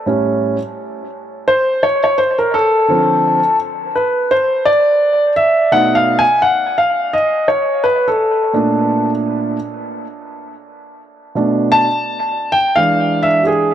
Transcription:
0.06 0.56 A2 medium
0.06 0.56 G3 medium
0.06 0.56 C#4 medium
1.48 1.84 C5 loud
1.83 2.02 C#5 loud
2.04 2.17 C#5 medium
2.18 2.38 C5 loud
2.39 2.54 A#4 medium
2.54 3.56 A4 loud
2.88 3.38 D3 medium
2.88 3.39 F3 medium
2.88 3.39 C4 medium
3.96 4.32 B4 medium
4.31 4.67 C5 medium
4.65 5.32 D5 loud
5.36 5.73 E5 loud
5.72 6.21 B2 medium
5.72 6.21 A3 medium
5.72 6.21 D#4 medium
5.72 5.96 F#5 loud
5.95 6.19 F5 loud
6.19 6.41 G#5 loud
6.42 6.78 F#5 loud
6.78 7.14 F5 medium
7.13 7.46 D#5 medium
7.48 7.84 C#5 medium
7.84 8.08 B4 medium
8.08 9.09 A4 medium
8.53 9.55 A#2 medium
8.53 9.56 A3 medium
8.53 9.56 D4 medium
11.35 11.85 B2 medium
11.35 11.85 A3 medium
11.35 11.86 D4 medium
11.72 12.56 A5 loud
12.52 12.77 G5 loud
12.76 13.74 E3 medium
12.76 13.74 G#3 medium
12.76 13.74 D4 medium
12.76 13.25 F5 loud
13.23 13.42 E5 medium
13.42 13.48 G4 medium
13.47 13.74 G#4 medium

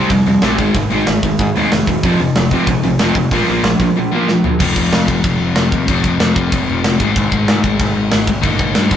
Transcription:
0.00 0.10 G3 medium
0.00 0.11 C4 loud
0.10 0.20 F2 medium
0.10 0.25 C3 medium
0.10 0.25 G3 medium
0.10 kick loud
0.10 open hi-hat medium
0.26 0.37 F2 medium
0.26 0.41 C3 medium
0.26 0.42 G3 medium
0.26 open hi-hat medium
0.42 0.59 A#1 medium
0.42 0.58 C3 medium
0.42 0.58 G3 loud
0.42 0.59 C4 loud
0.42 snare loud
0.42 open hi-hat medium
0.58 0.69 G#1 medium
0.58 0.73 G#2 medium
0.58 0.74 D#3 loud
0.58 0.74 G#3 loud
0.58 kick medium
0.58 open hi-hat medium
0.74 0.84 G#1 medium
0.74 0.89 G#2 medium
0.74 0.90 D#3 medium
0.74 kick loud
0.74 open hi-hat medium
0.90 1.01 G#1 medium
0.90 1.05 G#2 medium
0.90 1.05 D#3 medium
0.90 1.07 G#3 medium
0.90 open hi-hat medium
1.07 1.18 G#1 medium
1.07 1.21 G#2 medium
1.07 1.21 D#3 medium
1.07 snare loud
1.07 open hi-hat medium
1.23 1.33 G#1 medium
1.23 1.38 G#2 medium
1.23 1.38 D#3 medium
1.23 kick medium
1.23 open hi-hat medium
1.39 1.49 G#2 loud
1.39 1.54 G#2 medium
1.39 1.55 D#3 medium
1.39 kick loud
1.39 open hi-hat medium
1.56 1.66 D#2 medium
1.56 1.71 G#2 medium
1.56 1.71 D#3 loud
1.56 1.71 G#3 loud
1.56 open hi-hat medium
1.72 1.82 F1 medium
1.72 1.86 G#2 medium
1.72 1.86 D#3 medium
1.72 snare loud
1.72 open hi-hat medium
1.87 1.97 E1 medium
1.87 2.02 G#2 medium
1.87 2.02 D#3 medium
1.87 kick medium
1.87 open hi-hat medium
2.03 2.13 F1 medium
2.03 2.19 F2 medium
2.03 2.19 C3 loud
2.03 2.19 F3 loud
2.03 kick loud
2.03 open hi-hat medium
2.20 2.30 F1 medium
2.20 2.35 F2 medium
2.20 2.35 C3 medium
2.20 open hi-hat medium
2.35 2.56 F1 medium
2.35 2.50 F2 medium
2.35 2.50 C3 medium
2.35 snare loud
2.35 open hi-hat medium
2.51 2.66 F2 medium
2.51 2.67 C3 medium
2.51 2.68 F3 medium
2.51 kick medium
2.51 open hi-hat medium
2.67 2.77 A#1 medium
2.67 2.82 F2 medium
2.67 2.82 C3 medium
2.67 kick loud
2.67 open hi-hat medium
2.83 2.94 A#1 medium
2.83 2.98 F2 medium
2.83 2.98 C3 medium
2.83 open hi-hat medium
2.99 3.10 F1 medium
2.99 3.14 F2 medium
2.99 3.14 C3 loud
2.99 3.16 F3 loud
2.99 snare loud
2.99 open hi-hat medium
3.15 3.25 F1 medium
3.15 3.30 F2 medium
3.15 3.30 C3 medium
3.15 kick medium
3.15 open hi-hat medium
3.31 3.42 A#1 loud
3.31 3.47 A#2 medium
3.31 3.47 F3 loud
3.31 3.48 A#3 loud
3.31 kick loud
3.31 open hi-hat medium
3.48 3.58 A#1 medium
3.48 3.63 A#2 medium
3.48 3.63 F3 medium
3.48 3.64 A#3 loud
3.48 open hi-hat medium
3.63 3.73 A#1 medium
3.63 3.78 A#2 medium
3.63 3.79 F3 medium
3.63 snare loud
3.63 open hi-hat medium
3.79 3.90 A#1 medium
3.79 3.95 A#2 medium
3.79 3.95 F3 medium
3.79 kick medium
3.79 open hi-hat medium
3.96 4.10 A#2 medium
3.96 4.11 F3 medium
4.12 4.27 A#2 medium
4.12 4.27 F3 medium
4.12 4.27 A#3 loud
4.28 4.43 A#2 medium
4.28 4.44 F3 medium
4.28 snare medium
4.44 4.59 A#2 medium
4.44 4.59 F3 medium
4.44 floor tom medium
4.59 4.73 F1 medium
4.59 5.86 F2 medium
4.59 5.88 C3 loud
4.59 5.88 F3 loud
4.59 kick loud
4.59 crash loud
4.59 crash medium
4.76 4.89 F1 medium
4.76 kick medium
4.92 5.06 F2 medium
4.92 snare loud
4.92 crash medium
5.08 5.21 F1 medium
5.08 kick medium
5.23 5.37 F1 medium
5.23 kick loud
5.23 crash medium
5.40 5.54 F1 medium
5.55 5.69 F1 medium
5.55 snare loud
5.55 crash medium
5.72 5.85 D#2 medium
5.72 kick medium
5.87 6.01 F1 loud
5.87 6.99 F2 loud
5.87 7.00 C3 loud
5.87 7.00 F3 loud
5.87 kick loud
5.87 crash medium
6.04 6.17 F1 medium
6.04 kick medium
6.20 6.33 F2 loud
6.20 snare loud
6.20 crash medium
6.36 6.49 F1 medium
6.36 kick medium
6.52 6.65 F1 loud
6.52 kick loud
6.52 crash medium
6.69 6.82 F1 medium
6.84 6.98 F1 medium
6.84 snare loud
6.84 crash medium
7.00 7.13 G#1 medium
7.00 8.27 G#2 medium
7.00 8.28 D#3 loud
7.00 8.29 G#3 loud
7.00 kick medium
7.16 7.29 G#1 medium
7.16 kick loud
7.16 crash medium
7.32 7.45 G#1 medium
7.32 kick medium
7.48 7.61 G#2 loud
7.48 snare loud
7.48 crash medium
7.63 7.77 G#1 medium
7.63 kick medium
7.79 7.93 G#1 loud
7.79 kick loud
7.79 crash medium
7.96 8.09 G#1 medium
8.11 8.26 G#1 medium
8.11 snare loud
8.11 crash medium
8.27 8.41 G#1 medium
8.27 kick loud
8.41 8.57 G1 medium
8.41 8.97 D#3 medium
8.41 8.97 A#3 loud
8.41 kick loud
8.41 crash medium
8.46 8.97 D#4 loud
8.59 8.73 G1 medium
8.59 kick medium
8.75 8.90 G2 loud
8.75 snare loud
8.75 crash medium
8.91 8.97 G1 medium
8.91 kick medium

